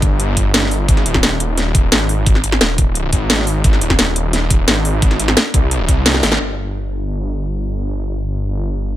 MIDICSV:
0, 0, Header, 1, 3, 480
1, 0, Start_track
1, 0, Tempo, 344828
1, 1232, Time_signature, 4, 2, 24, 8
1, 12479, End_track
2, 0, Start_track
2, 0, Title_t, "Detuned saw bass"
2, 0, Program_c, 0, 39
2, 0, Note_on_c, 0, 31, 100
2, 1213, Note_off_c, 0, 31, 0
2, 1232, Note_on_c, 0, 32, 97
2, 1453, Note_off_c, 0, 32, 0
2, 1472, Note_on_c, 0, 27, 99
2, 2653, Note_off_c, 0, 27, 0
2, 2671, Note_on_c, 0, 32, 96
2, 3372, Note_off_c, 0, 32, 0
2, 3392, Note_on_c, 0, 32, 97
2, 3613, Note_off_c, 0, 32, 0
2, 3632, Note_on_c, 0, 27, 100
2, 4333, Note_off_c, 0, 27, 0
2, 4352, Note_on_c, 0, 32, 97
2, 5053, Note_off_c, 0, 32, 0
2, 5071, Note_on_c, 0, 32, 94
2, 5293, Note_off_c, 0, 32, 0
2, 5311, Note_on_c, 0, 27, 101
2, 6492, Note_off_c, 0, 27, 0
2, 6511, Note_on_c, 0, 32, 99
2, 7212, Note_off_c, 0, 32, 0
2, 7232, Note_on_c, 0, 32, 103
2, 7453, Note_off_c, 0, 32, 0
2, 7712, Note_on_c, 0, 36, 93
2, 8173, Note_off_c, 0, 36, 0
2, 8192, Note_on_c, 0, 36, 95
2, 8653, Note_off_c, 0, 36, 0
2, 8672, Note_on_c, 0, 32, 98
2, 8893, Note_off_c, 0, 32, 0
2, 8912, Note_on_c, 0, 31, 79
2, 12479, Note_off_c, 0, 31, 0
2, 12479, End_track
3, 0, Start_track
3, 0, Title_t, "Drums"
3, 32, Note_on_c, 9, 36, 108
3, 33, Note_on_c, 9, 42, 92
3, 171, Note_off_c, 9, 36, 0
3, 172, Note_off_c, 9, 42, 0
3, 273, Note_on_c, 9, 42, 78
3, 412, Note_off_c, 9, 42, 0
3, 512, Note_on_c, 9, 36, 65
3, 513, Note_on_c, 9, 42, 94
3, 651, Note_off_c, 9, 36, 0
3, 652, Note_off_c, 9, 42, 0
3, 753, Note_on_c, 9, 38, 127
3, 753, Note_on_c, 9, 42, 74
3, 873, Note_off_c, 9, 38, 0
3, 873, Note_on_c, 9, 38, 41
3, 892, Note_off_c, 9, 42, 0
3, 993, Note_on_c, 9, 46, 82
3, 1012, Note_off_c, 9, 38, 0
3, 1132, Note_off_c, 9, 46, 0
3, 1232, Note_on_c, 9, 36, 123
3, 1233, Note_on_c, 9, 42, 77
3, 1353, Note_on_c, 9, 40, 32
3, 1371, Note_off_c, 9, 36, 0
3, 1372, Note_off_c, 9, 42, 0
3, 1472, Note_on_c, 9, 42, 94
3, 1492, Note_off_c, 9, 40, 0
3, 1592, Note_on_c, 9, 36, 67
3, 1592, Note_on_c, 9, 40, 54
3, 1612, Note_off_c, 9, 42, 0
3, 1712, Note_on_c, 9, 38, 120
3, 1712, Note_on_c, 9, 42, 75
3, 1731, Note_off_c, 9, 36, 0
3, 1731, Note_off_c, 9, 40, 0
3, 1852, Note_off_c, 9, 38, 0
3, 1852, Note_off_c, 9, 42, 0
3, 1952, Note_on_c, 9, 42, 91
3, 2091, Note_off_c, 9, 42, 0
3, 2193, Note_on_c, 9, 38, 36
3, 2193, Note_on_c, 9, 42, 78
3, 2332, Note_off_c, 9, 38, 0
3, 2332, Note_off_c, 9, 42, 0
3, 2432, Note_on_c, 9, 36, 110
3, 2433, Note_on_c, 9, 42, 97
3, 2572, Note_off_c, 9, 36, 0
3, 2572, Note_off_c, 9, 42, 0
3, 2672, Note_on_c, 9, 38, 120
3, 2672, Note_on_c, 9, 42, 79
3, 2811, Note_off_c, 9, 38, 0
3, 2811, Note_off_c, 9, 42, 0
3, 2912, Note_on_c, 9, 46, 83
3, 3051, Note_off_c, 9, 46, 0
3, 3152, Note_on_c, 9, 36, 121
3, 3152, Note_on_c, 9, 42, 83
3, 3273, Note_on_c, 9, 40, 32
3, 3292, Note_off_c, 9, 36, 0
3, 3292, Note_off_c, 9, 42, 0
3, 3392, Note_on_c, 9, 42, 94
3, 3412, Note_off_c, 9, 40, 0
3, 3512, Note_on_c, 9, 40, 57
3, 3531, Note_off_c, 9, 42, 0
3, 3632, Note_on_c, 9, 38, 110
3, 3632, Note_on_c, 9, 42, 79
3, 3652, Note_off_c, 9, 40, 0
3, 3771, Note_off_c, 9, 38, 0
3, 3771, Note_off_c, 9, 42, 0
3, 3871, Note_on_c, 9, 42, 96
3, 3872, Note_on_c, 9, 36, 99
3, 4011, Note_off_c, 9, 36, 0
3, 4011, Note_off_c, 9, 42, 0
3, 4112, Note_on_c, 9, 42, 79
3, 4251, Note_off_c, 9, 42, 0
3, 4351, Note_on_c, 9, 42, 97
3, 4352, Note_on_c, 9, 36, 60
3, 4490, Note_off_c, 9, 42, 0
3, 4491, Note_off_c, 9, 36, 0
3, 4591, Note_on_c, 9, 38, 117
3, 4591, Note_on_c, 9, 42, 80
3, 4711, Note_off_c, 9, 38, 0
3, 4711, Note_on_c, 9, 38, 37
3, 4730, Note_off_c, 9, 42, 0
3, 4830, Note_on_c, 9, 46, 87
3, 4850, Note_off_c, 9, 38, 0
3, 4969, Note_off_c, 9, 46, 0
3, 5070, Note_on_c, 9, 42, 85
3, 5072, Note_on_c, 9, 36, 116
3, 5191, Note_on_c, 9, 40, 32
3, 5209, Note_off_c, 9, 42, 0
3, 5211, Note_off_c, 9, 36, 0
3, 5310, Note_on_c, 9, 42, 103
3, 5330, Note_off_c, 9, 40, 0
3, 5430, Note_on_c, 9, 40, 59
3, 5431, Note_on_c, 9, 36, 59
3, 5449, Note_off_c, 9, 42, 0
3, 5550, Note_on_c, 9, 38, 110
3, 5550, Note_on_c, 9, 42, 81
3, 5569, Note_off_c, 9, 40, 0
3, 5570, Note_off_c, 9, 36, 0
3, 5690, Note_off_c, 9, 38, 0
3, 5690, Note_off_c, 9, 42, 0
3, 5790, Note_on_c, 9, 42, 101
3, 5930, Note_off_c, 9, 42, 0
3, 6030, Note_on_c, 9, 38, 35
3, 6030, Note_on_c, 9, 42, 84
3, 6170, Note_off_c, 9, 38, 0
3, 6170, Note_off_c, 9, 42, 0
3, 6270, Note_on_c, 9, 42, 102
3, 6271, Note_on_c, 9, 36, 100
3, 6410, Note_off_c, 9, 36, 0
3, 6410, Note_off_c, 9, 42, 0
3, 6511, Note_on_c, 9, 38, 112
3, 6511, Note_on_c, 9, 42, 84
3, 6650, Note_off_c, 9, 38, 0
3, 6650, Note_off_c, 9, 42, 0
3, 6751, Note_on_c, 9, 46, 89
3, 6891, Note_off_c, 9, 46, 0
3, 6991, Note_on_c, 9, 36, 115
3, 6991, Note_on_c, 9, 42, 85
3, 7112, Note_on_c, 9, 40, 34
3, 7130, Note_off_c, 9, 36, 0
3, 7130, Note_off_c, 9, 42, 0
3, 7232, Note_on_c, 9, 42, 101
3, 7251, Note_off_c, 9, 40, 0
3, 7352, Note_on_c, 9, 40, 60
3, 7371, Note_off_c, 9, 42, 0
3, 7472, Note_on_c, 9, 38, 112
3, 7472, Note_on_c, 9, 42, 83
3, 7491, Note_off_c, 9, 40, 0
3, 7611, Note_off_c, 9, 38, 0
3, 7611, Note_off_c, 9, 42, 0
3, 7712, Note_on_c, 9, 36, 98
3, 7713, Note_on_c, 9, 42, 99
3, 7851, Note_off_c, 9, 36, 0
3, 7852, Note_off_c, 9, 42, 0
3, 7952, Note_on_c, 9, 42, 87
3, 8092, Note_off_c, 9, 42, 0
3, 8192, Note_on_c, 9, 36, 60
3, 8193, Note_on_c, 9, 42, 108
3, 8331, Note_off_c, 9, 36, 0
3, 8332, Note_off_c, 9, 42, 0
3, 8432, Note_on_c, 9, 38, 122
3, 8432, Note_on_c, 9, 42, 84
3, 8552, Note_off_c, 9, 38, 0
3, 8552, Note_on_c, 9, 38, 55
3, 8571, Note_off_c, 9, 42, 0
3, 8673, Note_off_c, 9, 38, 0
3, 8673, Note_on_c, 9, 38, 82
3, 8673, Note_on_c, 9, 46, 86
3, 8793, Note_off_c, 9, 38, 0
3, 8793, Note_on_c, 9, 38, 81
3, 8812, Note_off_c, 9, 46, 0
3, 8932, Note_off_c, 9, 38, 0
3, 12479, End_track
0, 0, End_of_file